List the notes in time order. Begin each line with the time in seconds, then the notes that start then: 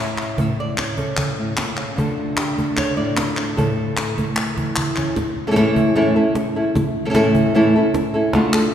Already playing: A2 C#4
0.00 E5
0.18 F5, clap
0.38 A2 E5, cajon bass
0.60 D5
0.78 C#5, cajon slap, clap
0.97 C#4 A4, cajon bass
1.17 A4, cajon bass, clap
1.38 A2
1.57 A#2, cajon slap, clap
1.77 C#3, clap
1.96 D3 A3 D4 F4 A4, cajon bass
2.17 F4
2.37 G4, cajon slap, clap
2.57 A3 A4, cajon bass
2.77 C#5, cajon bass, cajon slap, clap
2.96 A2 D5
3.17 F4, cajon slap, clap
3.37 D4, clap
3.56 A2 A4, cajon bass
3.97 cajon slap, clap
4.17 A3, cajon bass
4.36 cajon slap, clap
4.57 E3, cajon bass
4.76 cajon bass, clap
4.96 C#4, cajon bass, clap
5.16 muted nylon-string guitar stroke, cajon bass, cajon slap
5.37 cajon slap
5.47 E3 A3 C#4 E4 A4
5.51 E3 A3 C#4 E4 A4
5.56 A2 E3 A3 C#4 E4 A4, cajon slap
5.76 cajon bass
5.95 A2 E3 A3 C#4 E4 A4
6.16 A3 C#4 E4 A4
6.35 muted nylon-string guitar stroke, cajon slap
6.56 A3 C#4 E4 A4
6.75 muted nylon-string guitar stroke, cajon bass
7.05 E3 A3 C#4 E4 A4
7.10 A2 E3 A3 C#4 E4 A4
7.14 E3 A3 C#4 E4 A4, cajon slap
7.35 cajon bass
7.55 A2 E3 A3 C#4 E4 A4
7.76 A3 C#4 E4 A4
7.94 muted nylon-string guitar stroke, cajon bass, cajon slap
8.14 A3 C#4 E4 A4
8.33 D3 A3 D4 F4 A4, cajon bass, cajon slap
8.53 D4 F4 A4, clap